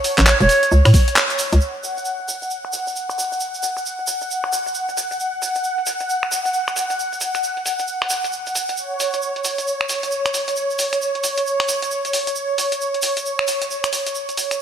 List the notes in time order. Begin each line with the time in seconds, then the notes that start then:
Already playing: C#5
0.04 open hi-hat, shaker
0.18 A1, finger snap, clap, closed hi-hat, shaker
0.27 C#5, clap, shaker
0.40 E1 C#5, closed hi-hat, shaker
0.49 open hi-hat, shaker
0.63 closed hi-hat, shaker
0.72 C#2, shaker
0.85 A2, finger snap, open hi-hat, shaker
0.94 kick, open hi-hat, shaker
1.08 closed hi-hat, shaker
1.16 clap, shaker
1.30 closed hi-hat, shaker
1.39 open hi-hat, shaker
1.52 C#2, closed hi-hat, shaker
1.61 F#5, shaker
1.83 open hi-hat, shaker
1.97 closed hi-hat, shaker
2.05 shaker
2.20 closed hi-hat
2.28 open hi-hat, shaker
2.42 closed hi-hat, shaker
2.50 shaker
2.65 finger snap
2.73 open hi-hat, shaker
2.87 closed hi-hat, shaker
2.96 shaker
3.09 finger snap, closed hi-hat, shaker
3.18 open hi-hat, shaker
3.32 closed hi-hat, shaker
3.40 shaker
3.54 shaker
3.63 open hi-hat, shaker
3.77 finger snap, closed hi-hat, shaker
3.86 shaker
3.99 closed hi-hat
4.07 open hi-hat, shaker
4.21 closed hi-hat, shaker
4.31 shaker
4.44 finger snap, open hi-hat
4.52 open hi-hat, shaker
4.66 closed hi-hat, shaker
4.75 shaker
4.89 closed hi-hat, shaker
4.97 open hi-hat, shaker
5.11 closed hi-hat, shaker
5.20 shaker
5.42 open hi-hat, shaker
5.55 closed hi-hat, shaker
5.64 shaker
5.78 closed hi-hat
5.86 open hi-hat, shaker
6.00 closed hi-hat, shaker
6.10 shaker
6.23 finger snap
6.32 open hi-hat, shaker
6.45 closed hi-hat, shaker
6.53 shaker
6.67 finger snap, closed hi-hat, shaker
6.76 open hi-hat, shaker
6.90 closed hi-hat, shaker
6.99 shaker
7.13 closed hi-hat, shaker
7.21 open hi-hat, shaker
7.34 finger snap, closed hi-hat, shaker
7.43 shaker
7.57 closed hi-hat
7.66 open hi-hat, shaker
7.79 closed hi-hat, shaker
7.87 shaker
8.02 finger snap, open hi-hat
8.10 open hi-hat, shaker
8.24 closed hi-hat, shaker
8.32 shaker
8.46 closed hi-hat, shaker
8.55 open hi-hat, shaker
8.69 closed hi-hat, shaker
8.77 C#5, shaker
9.00 open hi-hat, shaker
9.13 closed hi-hat, shaker
9.22 shaker
9.36 closed hi-hat
9.45 open hi-hat, shaker
9.58 closed hi-hat, shaker
9.67 shaker
9.81 finger snap
9.89 open hi-hat, shaker
10.03 closed hi-hat, shaker
10.11 shaker
10.25 finger snap, closed hi-hat, shaker
10.34 open hi-hat, shaker
10.48 closed hi-hat, shaker
10.56 shaker
10.70 shaker
10.79 open hi-hat, shaker
10.93 finger snap, closed hi-hat, shaker
11.02 shaker
11.15 closed hi-hat
11.24 open hi-hat, shaker
11.37 closed hi-hat, shaker
11.47 shaker
11.60 finger snap, open hi-hat
11.69 open hi-hat, shaker
11.82 closed hi-hat, shaker
11.91 shaker
12.05 closed hi-hat, shaker
12.13 open hi-hat, shaker
12.27 closed hi-hat, shaker
12.36 shaker
12.58 open hi-hat, shaker
12.72 closed hi-hat, shaker
12.81 shaker
12.94 closed hi-hat
13.02 open hi-hat, shaker
13.17 closed hi-hat, shaker
13.26 shaker
13.39 finger snap
13.48 open hi-hat, shaker
13.62 closed hi-hat, shaker
13.71 shaker
13.84 finger snap, closed hi-hat, shaker
13.93 open hi-hat, shaker
14.06 closed hi-hat, shaker
14.15 shaker
14.29 closed hi-hat, shaker
14.37 open hi-hat, shaker
14.51 finger snap, closed hi-hat, shaker